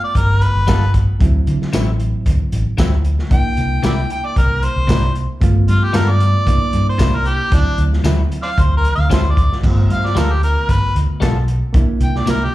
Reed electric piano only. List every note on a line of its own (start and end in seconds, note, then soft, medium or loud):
0.00 1.15 A3 medium
0.00 1.16 B3 medium
0.00 1.17 F4 medium
1.19 3.26 F#3 medium
1.19 3.27 C4 medium
1.19 3.28 E4 medium
3.30 5.37 A#3 medium
3.30 5.38 D4 medium
3.30 5.38 E4 medium
5.41 6.44 A3 medium
5.41 6.45 B3 medium
5.41 6.46 F4 medium
6.46 7.50 A#3 medium
6.46 7.51 D4 medium
6.46 7.51 E4 medium
7.50 9.58 F#3 medium
7.50 9.59 C4 medium
7.50 9.60 E4 medium
9.62 11.69 A3 medium
9.62 11.70 B3 medium
9.62 11.71 F4 medium
11.73 12.55 A#3 medium
11.73 12.55 D4 medium
11.73 12.55 E4 medium